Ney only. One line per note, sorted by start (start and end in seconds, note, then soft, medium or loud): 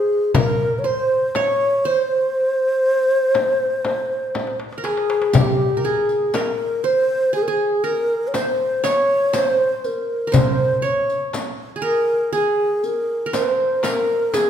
0.00 0.35 G#4 medium
0.35 0.80 A#4 medium
0.79 0.88 C#5 medium
0.86 1.37 C5 medium
1.35 1.86 C#5 medium
1.85 4.57 C5 medium
4.85 5.36 G#4 medium
5.34 5.86 G4 medium
5.84 6.36 G#4 medium
6.34 6.86 A#4 medium
6.84 7.34 C5 medium
7.35 7.44 G#4 medium
7.43 7.50 A#4 medium
7.49 7.86 G#4 medium
7.84 8.29 A#4 medium
8.28 8.36 C#5 medium
8.35 8.86 C5 medium
8.84 9.36 C#5 medium
9.35 9.87 C5 medium
9.85 10.35 A#4 medium
10.34 10.86 C5 medium
10.84 11.34 C#5 medium
11.85 12.31 A#4 medium
12.35 12.86 G#4 medium
12.85 13.37 A#4 medium
13.36 13.85 C5 medium
13.84 14.35 A#4 medium
14.34 14.50 G#4 loud